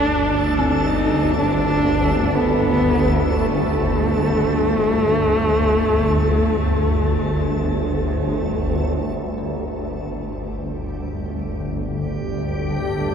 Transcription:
0.00 9.34 G1 medium
0.00 9.35 D2 medium
0.00 0.88 D4 loud
0.00 1.37 F#4 medium
0.00 9.38 A4 medium
0.59 6.53 C4 medium
0.86 1.36 D#4 loud
1.37 2.37 D4 loud
2.35 3.35 B3 medium
3.34 8.34 A3 medium
9.35 13.15 G1 medium
9.35 13.15 D2 medium
9.35 13.15 A2 medium
9.35 13.15 D4 soft
9.35 13.15 G4 medium
10.77 13.15 G3 medium
11.54 13.15 D5 medium
11.62 13.15 A4 medium

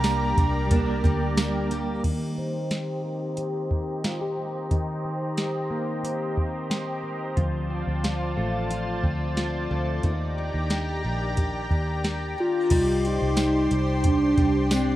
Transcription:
0.00 0.35 C2 loud
0.00 1.03 G3 medium
0.00 0.37 A#3 medium
0.00 0.71 A#3 medium
0.00 0.70 D4 medium
0.00 0.71 D4 medium
0.00 2.01 G4 medium
0.00 0.79 A#4 medium
0.00 2.02 A#4 medium
0.00 2.02 D5 medium
0.00 1.38 A#5 loud
0.00 2.01 A#5 medium
0.00 closed hi-hat medium
0.00 tambourine medium
0.04 snare medium
0.37 1.01 C2 loud
0.37 1.38 A#3 medium
0.37 kick loud
0.37 closed hi-hat medium
0.67 2.58 G3 medium
0.71 2.58 A#3 medium
0.71 2.11 D4 medium
0.71 kick loud
0.71 closed hi-hat medium
0.75 2.07 D4 medium
0.75 2.58 A#4 medium
1.04 2.00 D2 loud
1.04 1.71 G3 medium
1.04 kick medium
1.04 closed hi-hat soft
1.37 2.41 A#3 medium
1.37 snare loud
1.37 closed hi-hat medium
1.37 tambourine medium
1.71 2.04 G3 medium
1.71 closed hi-hat medium
2.04 4.70 D#3 medium
2.04 7.34 G4 medium
2.04 10.00 C5 medium
2.04 7.34 D#5 medium
2.04 7.33 A#5 medium
2.04 kick medium
2.04 closed hi-hat medium
2.04 crash medium
2.38 3.71 C4 medium
2.71 3.37 G4 medium
2.71 snare medium
2.71 closed hi-hat medium
3.04 4.36 A#3 soft
3.37 4.04 G4 medium
3.37 closed hi-hat medium
3.71 5.04 C4 medium
3.71 kick medium
4.04 4.21 F4 medium
4.04 snare medium
4.04 closed hi-hat medium
4.21 5.37 G4 soft
4.37 5.69 A#3 soft
4.71 7.36 D#3 medium
4.71 kick medium
4.71 closed hi-hat medium
5.05 6.37 C4 medium
5.37 6.02 G4 medium
5.37 snare medium
5.37 closed hi-hat medium
5.70 7.02 A#3 medium
6.03 6.69 G4 medium
6.03 closed hi-hat medium
6.37 7.70 C4 soft
6.37 kick medium
6.70 7.44 G4 medium
6.70 snare medium
6.70 closed hi-hat medium
7.03 7.44 A#3 medium
7.36 7.85 D2 medium
7.36 10.04 F3 medium
7.36 10.01 F4 medium
7.36 12.66 D5 medium
7.36 10.01 A5 medium
7.36 kick medium
7.36 closed hi-hat medium
7.70 9.02 C4 medium
7.87 8.35 D2 medium
8.04 8.69 F4 medium
8.04 snare medium
8.04 closed hi-hat medium
8.37 9.01 A1 medium
8.37 9.70 A3 medium
8.71 9.36 F4 medium
8.71 closed hi-hat medium
9.03 9.67 D2 medium
9.03 10.11 C4 medium
9.03 kick medium
9.37 10.11 F4 medium
9.37 snare medium
9.37 closed hi-hat medium
9.71 10.03 D2 medium
9.71 10.11 A3 medium
10.03 10.52 D#2 medium
10.03 12.70 D#3 medium
10.03 12.68 G4 medium
10.03 12.69 G5 medium
10.03 12.69 A#5 medium
10.03 kick medium
10.03 closed hi-hat soft
10.38 11.71 D4 medium
10.54 11.02 D#2 medium
10.70 11.37 G4 soft
10.70 snare medium
10.70 closed hi-hat medium
11.04 11.68 A#1 medium
11.04 12.37 A#3 soft
11.37 12.04 G4 medium
11.37 kick medium
11.37 closed hi-hat medium
11.71 12.34 D#2 loud
11.71 12.71 D4 soft
11.71 kick medium
12.04 14.96 G4 medium
12.04 snare medium
12.04 closed hi-hat medium
12.38 12.78 A#3 soft
12.38 13.09 F4 medium
12.70 13.18 C2 loud
12.70 13.37 G3 medium
12.70 14.04 D#4 medium
12.70 14.96 G4 medium
12.70 14.96 C5 medium
12.70 14.96 D5 medium
12.70 14.96 C6 medium
12.70 kick medium
12.70 closed hi-hat medium
12.70 crash medium
13.05 14.06 D#4 loud
13.05 closed hi-hat soft
13.22 13.69 C2 medium
13.37 14.36 G3 medium
13.37 snare loud
13.37 closed hi-hat medium
13.37 tambourine medium
13.71 14.34 C2 loud
13.71 closed hi-hat medium
14.04 14.75 D4 loud
14.04 kick medium
14.04 closed hi-hat medium
14.37 14.96 C2 loud
14.37 14.96 G3 medium
14.37 kick medium
14.37 closed hi-hat soft
14.71 14.96 C4 medium
14.71 14.96 D4 medium
14.71 snare loud
14.71 closed hi-hat medium
14.71 tambourine medium

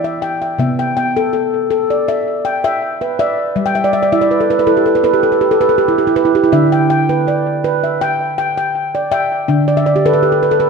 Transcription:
0.00 0.56 E3 medium
0.04 0.58 E5 medium
0.22 0.40 G5 medium
0.42 0.78 G5 soft
0.58 3.52 C3 medium
0.58 0.96 B3 medium
0.58 1.16 E5 medium
0.79 0.96 G5 medium
0.97 1.53 G5 medium
1.17 1.32 A4 medium
1.33 1.69 A4 medium
1.71 2.08 A4 medium
1.90 2.45 D5 medium
2.08 2.45 E5 medium
2.45 2.63 G5 medium
2.64 3.01 E5 medium
2.64 3.19 G5 medium
3.01 3.56 B4 medium
3.19 3.76 D5 medium
3.19 3.56 E5 medium
3.56 6.49 G3 medium
3.66 3.83 G5 medium
3.75 3.92 E5 medium
3.84 4.01 D5 medium
3.93 4.11 E5 medium
4.03 4.20 D5 medium
4.12 4.50 E4 medium
4.12 4.29 E5 medium
4.21 4.39 D5 medium
4.31 4.49 B4 medium
4.41 4.58 A4 medium
4.50 4.58 B4 medium
4.59 4.76 B4 medium
4.67 5.04 E4 medium
4.67 4.85 A4 medium
4.77 4.94 G4 medium
4.86 5.02 A4 medium
4.95 5.03 B4 medium
5.04 5.22 A4 medium
5.04 5.31 B4 medium
5.14 5.31 G4 medium
5.23 5.40 A4 medium
5.32 5.50 B4 medium
5.41 5.59 G4 medium
5.51 5.68 A4 medium
5.61 5.63 B4 medium
5.69 5.87 A4 medium
5.78 5.96 G4 medium
5.88 6.06 E4 medium
5.98 6.15 G4 medium
6.07 6.24 E4 medium
6.16 6.34 G4 medium
6.16 6.53 B4 medium
6.25 6.42 E4 medium
6.35 6.51 G4 medium
6.44 6.61 E4 medium
6.52 9.45 D3 medium
6.52 6.90 D4 medium
6.52 7.09 E5 medium
6.72 6.89 G5 medium
6.90 7.46 G5 medium
7.09 7.46 B4 medium
7.28 7.84 D5 medium
7.64 8.01 B4 medium
7.84 8.38 E5 medium
8.01 8.37 G5 medium
8.38 8.56 G5 medium
8.58 8.60 G5 medium
8.95 9.49 D5 medium
9.11 9.68 E5 medium
9.11 9.49 G5 medium
9.48 10.70 D3 medium
9.48 9.85 D4 medium
9.68 9.84 D5 medium
9.77 9.94 E5 medium
9.86 10.04 D5 medium
9.96 10.13 G4 medium
10.06 10.22 A4 medium
10.06 10.12 B4 medium
10.13 10.31 B4 medium
10.23 10.41 G4 medium
10.32 10.49 A4 medium
10.43 10.59 B4 medium
10.51 10.68 A4 medium
10.60 10.62 B4 medium

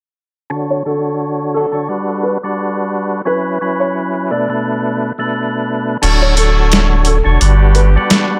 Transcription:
0.50 0.83 D3 medium
0.50 0.83 D4 medium
0.50 0.83 F#4 medium
0.50 0.84 C#5 loud
0.70 0.84 C#5 medium
0.85 1.66 D3 medium
0.85 1.66 D4 medium
0.85 1.67 F#4 medium
0.85 1.17 A4 medium
0.85 1.67 C#5 loud
1.54 1.77 F#3 medium
1.54 1.77 D4 medium
1.54 1.72 A4 medium
1.54 1.77 A4 loud
1.72 1.89 D3 medium
1.72 1.88 D4 medium
1.72 1.88 F#4 medium
1.72 1.89 C#5 medium
1.88 2.38 G3 medium
1.88 2.38 D4 medium
1.88 2.38 F#4 medium
1.88 2.38 B4 loud
2.23 2.41 B4 medium
2.44 3.21 G3 medium
2.44 3.22 D4 medium
2.44 3.22 F#4 medium
2.44 3.22 B4 loud
3.25 3.58 F#3 medium
3.25 3.59 C#4 medium
3.25 3.59 E4 medium
3.25 3.59 B4 medium
3.25 3.77 B4 medium
3.61 4.30 F#3 medium
3.61 4.31 C#4 medium
3.61 4.31 E4 medium
3.61 4.31 B4 loud
3.80 3.94 C#5 medium
4.31 4.47 B2 medium
4.31 4.48 A3 medium
4.31 4.48 D4 medium
4.31 4.49 B4 loud
4.31 4.48 D5 medium
4.49 5.12 B2 medium
4.49 5.12 A3 medium
4.49 5.13 D4 medium
4.49 5.13 B4 loud
5.18 5.97 B2 medium
5.18 5.97 A3 medium
5.18 5.97 D4 medium
5.18 5.98 B4 medium
6.02 7.22 D1 loud
6.02 6.35 D3 medium
6.02 7.05 F#3 medium
6.02 6.35 D4 medium
6.02 7.05 D4 medium
6.02 6.35 F#4 medium
6.02 7.05 A4 medium
6.02 6.35 C#5 loud
6.02 closed hi-hat medium
6.02 crash medium
6.22 6.36 C#5 medium
6.37 7.18 D3 medium
6.37 7.18 D4 medium
6.37 7.18 F#4 medium
6.37 6.69 A4 medium
6.37 7.19 C#5 loud
6.37 closed hi-hat medium
6.72 snare loud
6.72 closed hi-hat medium
7.05 7.24 A4 medium
7.05 closed hi-hat medium
7.24 7.38 E1 loud
7.24 7.40 D3 medium
7.24 7.40 D4 medium
7.24 7.40 F#4 medium
7.24 7.41 C#5 loud
7.40 7.97 G1 loud
7.40 8.39 D3 medium
7.40 7.90 G3 medium
7.40 8.39 B3 medium
7.40 7.90 D4 medium
7.40 7.90 F#4 medium
7.40 8.39 G4 medium
7.40 7.90 B4 loud
7.40 closed hi-hat medium
7.75 7.92 B4 medium
7.75 closed hi-hat medium
7.96 8.39 G3 medium
7.96 8.39 D4 medium
7.96 8.39 F#4 medium
7.96 8.39 B4 loud
8.10 snare loud
8.10 closed hi-hat medium

